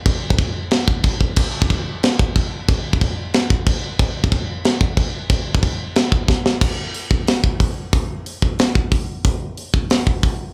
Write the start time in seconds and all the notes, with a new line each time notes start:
0.06 kick, china
0.30 kick
0.39 kick, china
0.71 snare, china
0.88 kick
1.03 kick, china
1.21 kick
1.36 kick, china, splash, crash
1.62 kick
1.70 kick, china
2.03 snare, china
2.19 kick
2.35 kick, china
2.68 kick, china
2.93 kick
3.01 kick, china
3.34 snare, china
3.50 kick
3.67 kick, china
3.99 kick, china
4.24 kick
4.32 kick, china
4.64 snare, china
4.81 kick
4.97 kick, china
5.30 kick, china
5.55 kick
5.63 kick, china
5.95 snare, china
6.12 kick
6.28 kick, snare
6.46 snare
6.61 kick, crash
6.94 open hi-hat
7.11 kick
7.27 snare, open hi-hat
7.44 kick
7.60 kick, open hi-hat
7.93 kick, open hi-hat
8.26 open hi-hat
8.42 kick
8.59 snare, open hi-hat
8.75 kick
8.92 kick, open hi-hat
9.25 kick, open hi-hat
9.57 open hi-hat
9.74 kick
9.90 snare, open hi-hat
10.07 kick
10.23 kick, open hi-hat